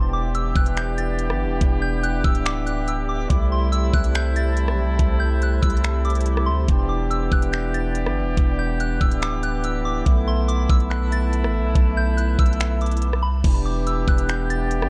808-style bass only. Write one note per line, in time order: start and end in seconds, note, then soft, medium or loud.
0.00 0.53 E1 loud
0.55 1.31 E1 loud
1.29 1.47 G1 loud
1.45 1.60 E1 loud
1.61 2.22 E1 loud
2.25 3.26 D1 loud
3.30 3.91 C2 loud
3.94 4.69 C2 loud
4.68 4.85 B1 loud
4.83 4.98 C2 loud
4.99 5.60 C2 loud
5.63 6.49 C2 loud
6.47 6.67 D2 loud
6.68 7.29 E1 loud
7.32 8.07 E1 loud
8.06 8.23 G1 loud
8.22 8.37 E1 loud
8.37 8.98 E1 loud
9.01 10.02 D1 loud
10.06 10.67 B1 loud
10.70 11.45 B1 loud
11.44 11.61 A1 loud
11.59 11.74 B1 loud
11.75 12.36 B1 loud
12.39 13.25 B1 loud
13.23 13.43 C2 loud
13.44 14.05 E1 loud
14.08 14.83 E1 loud
14.82 14.89 G1 loud